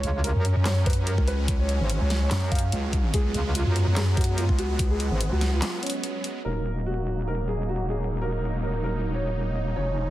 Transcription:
Already playing: F#3 G#3 C#4 C#5
0.03 C#2, closed hi-hat
0.24 A#4, closed hi-hat
0.35 F#2
0.45 closed hi-hat
0.56 F#2
0.65 C#5, snare, clap, closed hi-hat
0.86 B4, kick, closed hi-hat
0.90 closed hi-hat
0.93 closed hi-hat
1.07 A#4, closed hi-hat
1.18 C#2, kick
1.27 B4, closed hi-hat
1.48 kick, closed hi-hat
1.59 C#5
1.69 closed hi-hat
1.80 G#1
1.90 closed hi-hat
2.01 C#2 C#5
2.10 snare, closed hi-hat
2.21 C#5
2.31 F#2, snare, clap, closed hi-hat
2.51 F5, kick, closed hi-hat
2.55 closed hi-hat
2.59 closed hi-hat
2.72 C#2, closed hi-hat
2.93 kick, closed hi-hat
3.14 C#2 B3 G#4, kick, closed hi-hat
3.34 C#2, closed hi-hat
3.55 F4, closed hi-hat
3.66 F#2
3.76 closed hi-hat
3.87 F#2
3.96 G#4, snare, clap, closed hi-hat
4.17 F#4, kick, closed hi-hat
4.21 closed hi-hat
4.24 closed hi-hat
4.38 F4, closed hi-hat
4.49 C#2, kick
4.59 F#4, closed hi-hat
4.79 kick, closed hi-hat
4.90 G#4
5.00 closed hi-hat
5.11 G#1
5.21 closed hi-hat
5.32 C#2 F#4
5.41 snare, closed hi-hat
5.53 F4
5.62 snare, clap, closed hi-hat
5.83 C#4, closed hi-hat
5.86 closed hi-hat
5.90 closed hi-hat
6.03 closed hi-hat
6.24 closed hi-hat
6.45 D#1 F#3 A#3 D#4 A#4
6.86 F#4
7.28 A#4
7.48 G#4
7.69 F#4
7.90 G#4
8.21 A#4
8.63 A#4
8.84 A#4
9.14 C#5
9.76 F1 F3 C#4 C#5

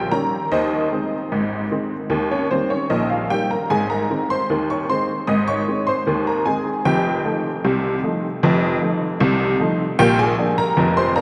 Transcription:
Already playing: G4 G5
0.12 D#3 G3 C#4 A#4 A#5
0.52 D#2 D#3 D#4 C5 D#5
0.92 D#3 G#3 C4
1.32 G#1 G#2
1.71 D#3 G#3 C4
2.10 D#2 D#3
2.31 C#4 C#5
2.51 D#3 G3 A#3 C4 C5
2.70 C#4 C#5
2.90 A#1 A#2 D#4 D#5
3.10 F4 F5
3.30 D#3 G3 A#3 G4 G5
3.51 A#4 A#5
3.70 G#1 G#2 G#4 G#5
3.90 A#4 A#5
4.10 D#3 G#3 C4
4.30 C5 C6
4.50 D#2 D#3
4.70 C#5 C#6
4.90 D#3 G#3 C4 C5 C6
5.27 G#1 G#2 D#5 D#6
5.48 C#5 C#6
5.68 D#3 G#3 C4
5.87 C5 C6
6.07 D#2 D#3
6.27 A#4 A#5
6.46 D#3 G#3 C4 G#4 G#5
6.85 F1 F2 G4 G5
7.25 F3 A3 D#4
7.64 C2 C3
8.04 F3 A3 D#4
8.43 F1 F2
8.82 F3 A3 D#4
9.20 C2 C3
9.60 F3 A3 D#4
9.99 A#1 A#2 G4 G5
10.19 G#4 G#5
10.39 F3 A#3 D4
10.58 A#4 A#5
10.77 F1 F2
10.97 C5 C6
11.16 F3 A#3 D4 A#4 A#5

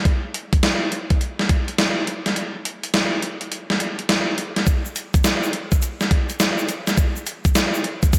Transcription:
0.05 kick, closed hi-hat
0.34 closed hi-hat
0.53 kick, closed hi-hat
0.63 snare, closed hi-hat
0.92 closed hi-hat
1.10 kick, closed hi-hat
1.21 closed hi-hat
1.39 snare
1.49 kick, closed hi-hat
1.68 closed hi-hat
1.78 snare, closed hi-hat
2.07 closed hi-hat
2.26 snare, closed hi-hat
2.36 closed hi-hat
2.65 closed hi-hat
2.83 closed hi-hat
2.94 snare, closed hi-hat
3.22 closed hi-hat
3.41 closed hi-hat
3.52 closed hi-hat
3.70 snare
3.80 closed hi-hat
3.99 closed hi-hat
4.09 snare, closed hi-hat
4.38 closed hi-hat
4.56 snare, closed hi-hat
4.67 kick, closed hi-hat, shaker
4.85 shaker
4.96 closed hi-hat, shaker
5.14 kick, closed hi-hat, shaker
5.24 snare, closed hi-hat, shaker
5.43 shaker
5.53 closed hi-hat
5.72 kick, closed hi-hat, shaker
5.82 closed hi-hat, shaker
6.01 snare, shaker
6.11 kick, closed hi-hat
6.29 closed hi-hat, shaker
6.40 snare, closed hi-hat, shaker
6.58 shaker
6.68 closed hi-hat, shaker
6.87 snare, closed hi-hat, shaker
6.97 kick, closed hi-hat, shaker
7.16 shaker
7.26 closed hi-hat, shaker
7.45 kick, closed hi-hat, shaker
7.55 snare, closed hi-hat, shaker
7.74 shaker
7.84 closed hi-hat
8.03 kick, closed hi-hat, shaker
8.13 kick, closed hi-hat, shaker

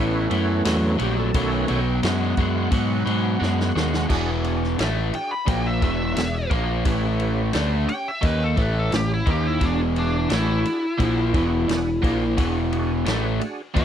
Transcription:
Already playing: A1 A2 E3 A3 B3 E4
0.00 C#4
0.30 F#2 A2 E3, ride
0.65 E2 A2 F#3, snare, ride
0.98 A#1 A2 F#3, ride
1.03 G4
1.19 A4
1.34 B1 B2 D#3 F#3 A3 C#4, kick, ride
1.53 B4
1.68 B1 B2 F#3 G5, ride
2.03 F#2 B2 G#3 F#5, snare, ride
2.37 F#2 B2 G#3, kick, ride
2.71 G#2 B2 F#3, kick, ride
3.06 G#2 B2 F#3, ride
3.40 F#2 B2 G#3, snare
3.60 snare
3.75 D#2 B2 G#3, snare
3.94 snare
4.09 E1 E2 B2 E3 D4 F#4 G#4, kick, crash
4.44 D4 F#4 G#4, ride
4.64 snare
4.77 A1 A2 E3 A3 D4 F#4 G#4, snare, ride
5.13 D4 F#4 G#4 G5, muted overdriven electric guitar stroke, ride
5.31 B5
5.45 A#1 A#2 F3 A#3 D4 F#4 G#4 G5, kick, ride
5.67 E5
5.81 E1 E2 B2 E3 D4 F#4 G#4 E5, kick, ride
6.16 E1 E2 B2 D4 F#4 G#4, snare, ride
6.49 A#1 A#2 F3 A#3 D4 F#4 G#4, kick, ride
6.85 A1 A2 E3 A3 C#4 G4 B4, kick, ride
7.19 C#4 G4 B4, ride
7.53 D2 D3 A3 C#4 D4 G4 B4, snare, ride
7.88 C#4 G4 C#5 G5, muted overdriven electric guitar stroke, muted picked electric bass stroke, ride
8.08 E5
8.22 D#2 D#3 A#3 C#4 D#4 G4 B4, kick, ride
8.44 A4
8.57 A1 A2 E3 A3 C#4 G4 B4, kick, ride
8.62 B4
8.79 A4
8.92 A1 A2 E3 C#4 G4 B4, snare, ride
9.14 E4
9.26 D#2 D#3 A#3 C#4 D#4 G4 B4, kick, ride
9.31 G4
9.47 E4
9.60 E1 E2 B2 E3 D4 F#4 G#4, kick, ride
9.65 D4
9.95 D4 F#4 G#4, ride
10.29 A1 A2 E3 A3 D4 F#4 G#4, snare, ride
10.34 E4
10.64 D4 F#4 G#4, muted overdriven electric guitar stroke, ride
10.98 A#1 A#2 F3 A#3 D4 F#4 G#4, kick, ride
11.33 E1 E2 B2 E3 D4 F#4 G#4, kick, ride
11.68 E1 E2 B2 D4 F#4 G#4, snare, ride
12.02 A#1 A#2 F3 A#3 D4 F#4 G#4, kick, ride
12.36 E1 E2 B2 E3 D4 F#4 G#4, kick, ride
12.70 D4 F#4 G#4, ride
13.04 A1 A2 E3 A3 D4 F#4 G#4, snare, ride
13.39 D4 F#4 G#4, muted picked electric bass stroke, muted overdriven electric guitar stroke, ride
13.75 E2 E3 B3 D4 E4 F#4 G4 B4, kick, ride

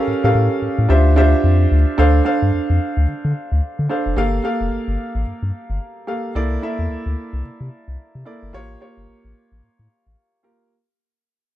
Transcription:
Already playing: C#4 G4 A4 A#4 F5
0.08 A2
0.24 A2 C#4 G4 A4 A#4 F5
0.35 A2
0.62 A2
0.79 A2
0.89 D2 D4 F4 G4 C5 E5
1.16 D4 F4 G4 C5 E5
1.44 F2
1.71 D2
1.98 D2 D4 A4 C5 F5
2.25 D4 A4 C5 F5
2.42 G2
2.53 F2
2.70 F2
2.97 D2
3.08 D3
3.25 D3
3.52 D2
3.79 D3
3.89 D4 A4 C5 F5
4.06 F1
4.16 G1 A#3 G4 A4 F5
4.44 A#3 G4 A4 F5
4.61 F1
4.72 G1
4.88 G1
5.15 A1
5.26 G2
5.43 G2
5.70 G1
6.07 A#3 G4 A4 F5
6.35 C2 A#3 E4 A4 D5
6.62 A#3 E4 A4 E5
6.79 E2
6.90 D2
7.06 D2
7.33 C2
7.44 C3
7.61 C3
7.88 C2
8.15 C3
8.25 A#3 E4 A4 D5
8.43 G1
8.53 A1 A#3 F4 G4 C#5
8.80 A#3 F4 G4 C#5
8.97 G1
9.08 A1
9.24 A1
9.52 A1
9.63 A2
9.79 A2
10.07 A1
10.43 A#3 F4 G4 A#4

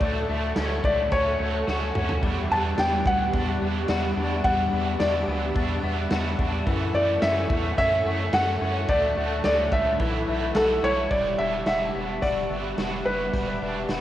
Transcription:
Already playing: C#4 F#4 A4 D5 C#6
0.00 D2 D3 F#3 A3 F#5, kick, ride
0.05 F#4
0.29 D2 A3
0.56 D2 C#4, snare, ride, tambourine
0.84 C#2 A3 D5, kick
1.11 D2 F#3 A3 C#4 F#4 C#5, kick, ride
1.39 D2 A3
1.67 D2 F#3 A3 C#4 F#4, snare
1.95 D2 C#4, mid tom
2.09 floor tom
2.21 E2 E3 G3 D4 E5 D6, kick, crash
2.26 E4 F#4
2.51 E2 B3 A5
2.78 E2 D4 G5, snare, ride, tambourine
3.06 D2 B3 F#5, kick
3.32 E2 G3 D4 E4 F#4, kick, ride
3.62 E2 B3
3.88 E2 G3 D4 E4 F#4 D5, snare, ride, tambourine
4.17 E2 D4
4.43 E2 E3 G3 D4 F#5, kick, ride
4.48 E4 F#4
4.73 E2 B3
5.00 E2 D4 D5, snare, ride, tambourine
5.28 D2 B3
5.55 E2 G3 D4 E4 F#4, kick, ride
5.83 E2 B3
6.10 E2 G3 D4 E4 F#4, snare, ride, tambourine
6.39 E2 D4, kick
6.66 F#2 C#3 E3 A3 C#4 F#4 A4 F#5 C#6, kick, ride
6.94 F#2 A3 D5
7.22 F#2 C#4 E5, snare, ride, tambourine
7.49 E2 E3 A3 C#4 F#4, kick
7.77 F#2 E3 A3 C#4 F#4 E5, kick, ride
8.05 F#2 A3
8.32 F#2 E3 A3 C#4 F#4 F#5, snare, ride, tambourine
8.61 F#2 C#4
8.87 D2 D3 F#3 A3 D5 C#6, kick, ride
8.93 F#4
9.17 D2 A3
9.44 D2 C#4 D5, snare, ride, tambourine
9.71 C#2 A3 E5, kick
9.99 B1 E3 A3 E4 E5 B5, kick, ride
10.03 F#4
10.27 B1 A3
10.55 B1 E3 A3 E4 F#4 A4, snare, ride, tambourine
10.59 F#4
10.83 B1 E4 C#5
11.11 E1 E3 G3 D4 E4 F#4 D5 E5 F#5 D6, kick, crash
11.38 E1 D4 E4 F#4 E5
11.43 D4
11.66 E1 F#4 E5 F#5, snare, closed hi-hat
11.85 A5
11.94 E1 B3
12.22 E1 G3 D4 E4 F#4 D5, kick, closed hi-hat
12.50 G1 B3
12.77 E1 G3 D4 E4 F#4, snare, closed hi-hat
12.81 F#4
13.05 F#1 B3 B4
13.33 E1 E3 G3 D4, kick, closed hi-hat
13.37 E4 F#4
13.61 E1 D4
13.89 E1 F#4, snare, closed hi-hat

